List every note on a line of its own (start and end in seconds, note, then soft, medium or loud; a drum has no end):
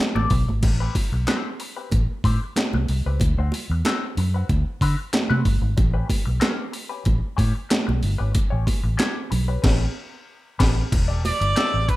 0.15 0.27 A1 medium
0.15 0.30 G4 medium
0.15 0.31 A4 medium
0.15 0.31 D5 medium
0.15 high conga medium
0.30 0.44 B1 loud
0.30 muted clean electric guitar stroke soft
0.30 kick loud
0.30 open hi-hat medium
0.48 0.59 G#1 loud
0.48 muted clean electric guitar stroke soft
0.48 high conga medium
0.63 0.88 A1 medium
0.63 muted clean electric guitar stroke soft
0.63 kick loud
0.63 closed hi-hat medium
0.63 crash medium
0.63 muted conga medium
0.80 0.95 C4 medium
0.80 0.96 G4 medium
0.80 0.96 B4 medium
0.95 muted clean electric guitar stroke soft
0.95 kick medium
0.95 open hi-hat medium
0.95 muted conga soft
1.12 1.24 B1 loud
1.12 muted clean electric guitar stroke soft
1.27 1.48 C4 medium
1.27 1.48 G4 medium
1.27 1.49 C5 medium
1.27 snare medium
1.27 clap medium
1.27 closed hi-hat medium
1.27 high conga medium
1.60 muted clean electric guitar stroke soft
1.60 open hi-hat medium
1.76 1.91 C4 soft
1.76 1.90 G4 medium
1.76 1.90 B4 medium
1.91 2.05 A1 medium
1.91 muted clean electric guitar stroke soft
1.91 kick medium
1.91 closed hi-hat medium
1.91 muted conga medium
2.24 2.37 A2 medium
2.24 2.39 C4 medium
2.24 2.39 G4 medium
2.24 2.40 C5 medium
2.24 kick medium
2.24 open hi-hat medium
2.24 muted conga soft
2.42 muted clean electric guitar stroke soft
2.56 muted clean electric guitar stroke soft
2.56 snare loud
2.56 clap medium
2.56 closed hi-hat medium
2.56 high conga medium
2.73 2.85 C2 medium
2.73 muted clean electric guitar stroke medium
2.73 high conga medium
2.88 3.02 C2 medium
2.88 open hi-hat medium
3.06 3.17 C#2 medium
3.06 3.20 C4 medium
3.06 3.22 G4 medium
3.06 3.21 B4 medium
3.20 3.34 D2 loud
3.20 muted clean electric guitar stroke soft
3.20 kick loud
3.20 closed hi-hat loud
3.20 muted conga medium
3.38 3.49 D2 loud
3.38 3.52 C4 medium
3.38 3.53 F#4 medium
3.38 3.55 C5 medium
3.52 muted clean electric guitar stroke soft
3.52 open hi-hat medium
3.52 muted conga medium
3.70 3.81 E2 medium
3.70 muted clean electric guitar stroke medium
3.85 4.04 C4 medium
3.85 4.04 F#4 medium
3.85 4.05 C5 loud
3.85 snare medium
3.85 clap medium
3.85 closed hi-hat medium
3.85 high conga medium
4.17 4.42 F#2 medium
4.17 muted clean electric guitar stroke soft
4.17 open hi-hat medium
4.17 low conga medium
4.34 4.48 C4 medium
4.34 4.48 F#4 medium
4.34 4.47 B4 medium
4.49 4.62 D2 medium
4.49 muted clean electric guitar stroke soft
4.49 kick medium
4.49 closed hi-hat medium
4.49 muted conga medium
4.81 4.94 D3 loud
4.81 4.96 C4 medium
4.81 4.97 F#4 medium
4.81 4.97 B4 medium
4.81 kick medium
4.81 open hi-hat medium
4.98 muted clean electric guitar stroke soft
5.13 muted clean electric guitar stroke soft
5.13 snare loud
5.13 clap medium
5.13 closed hi-hat medium
5.13 high conga medium
5.30 5.42 C3 medium
5.30 5.45 C4 medium
5.30 5.45 F#4 medium
5.30 5.46 B4 medium
5.30 high conga medium
5.45 5.58 G1 medium
5.45 muted clean electric guitar stroke soft
5.45 kick medium
5.45 open hi-hat medium
5.61 5.73 G#1 medium
5.61 muted clean electric guitar stroke soft
5.77 6.02 A1 loud
5.77 muted clean electric guitar stroke soft
5.77 kick loud
5.77 closed hi-hat loud
5.77 muted conga medium
5.94 6.07 C#4 medium
5.94 6.08 G4 medium
5.94 6.08 B4 medium
6.08 muted clean electric guitar stroke soft
6.08 kick medium
6.08 open hi-hat medium
6.08 muted conga medium
6.25 6.38 B1 medium
6.25 muted clean electric guitar stroke soft
6.40 6.62 C#4 medium
6.40 6.62 G4 medium
6.40 6.63 C#5 loud
6.40 snare medium
6.40 clap medium
6.40 closed hi-hat medium
6.40 high conga medium
6.72 muted clean electric guitar stroke soft
6.72 open hi-hat medium
6.89 7.03 C#4 medium
6.89 7.04 G4 medium
6.89 7.03 B4 medium
7.05 7.19 A1 loud
7.05 muted clean electric guitar stroke soft
7.05 kick medium
7.05 closed hi-hat medium
7.05 muted conga medium
7.37 7.51 A2 loud
7.37 7.52 C#4 medium
7.37 7.52 G4 medium
7.37 7.53 C#5 medium
7.37 kick medium
7.37 open hi-hat medium
7.37 muted conga soft
7.55 muted clean electric guitar stroke soft
7.69 muted clean electric guitar stroke soft
7.69 snare loud
7.69 clap medium
7.69 closed hi-hat medium
7.69 high conga medium
7.87 8.00 B1 medium
7.87 muted clean electric guitar stroke medium
7.87 high conga medium
8.03 8.16 G1 loud
8.03 open hi-hat medium
8.18 8.32 G#1 medium
8.18 8.32 C#4 medium
8.18 8.33 G4 medium
8.18 8.33 B4 medium
8.33 muted clean electric guitar stroke medium
8.33 kick loud
8.33 closed hi-hat loud
8.33 muted conga soft
8.50 8.64 A1 medium
8.50 8.66 C#4 medium
8.50 8.66 G4 medium
8.50 8.67 C#5 medium
8.67 muted clean electric guitar stroke soft
8.67 kick medium
8.67 open hi-hat medium
8.67 muted conga medium
8.83 8.95 A1 medium
8.83 muted clean electric guitar stroke soft
8.97 9.17 C#4 medium
8.97 9.17 G4 medium
8.97 9.17 C#5 medium
8.97 snare medium
8.97 clap medium
8.97 closed hi-hat medium
8.97 high conga medium
9.30 9.56 B1 medium
9.30 muted clean electric guitar stroke soft
9.30 open hi-hat medium
9.30 low conga medium
9.48 9.62 C#4 soft
9.48 9.61 G4 medium
9.48 9.61 B4 medium
9.62 9.86 A1 loud
9.62 9.86 C#4 medium
9.62 9.85 G4 medium
9.62 9.85 B4 loud
9.62 kick loud
9.62 snare loud
9.62 crash medium
10.59 10.82 A1 loud
10.59 10.82 C#4 loud
10.59 10.82 G4 loud
10.59 10.82 B4 medium
10.59 kick loud
10.59 snare loud
10.59 crash medium
10.92 11.30 E1 medium
10.92 muted clean electric guitar stroke soft
10.92 kick loud
10.92 closed hi-hat medium
10.92 crash medium
10.92 muted conga medium
11.08 11.21 G4 medium
11.08 11.22 A4 medium
11.08 11.23 D5 medium
11.23 11.91 D5 loud
11.23 muted clean electric guitar stroke soft
11.23 open hi-hat medium
11.23 muted conga medium
11.41 11.53 G1 medium
11.41 muted clean electric guitar stroke soft
11.41 closed hi-hat medium
11.56 11.74 G4 medium
11.56 11.75 A4 medium
11.56 11.75 E5 loud
11.56 snare medium
11.56 clap medium
11.56 closed hi-hat medium
11.56 high conga medium
11.74 11.85 A1 medium
11.89 11.96 B4 loud
11.89 muted clean electric guitar stroke soft
11.89 kick medium
11.89 closed hi-hat medium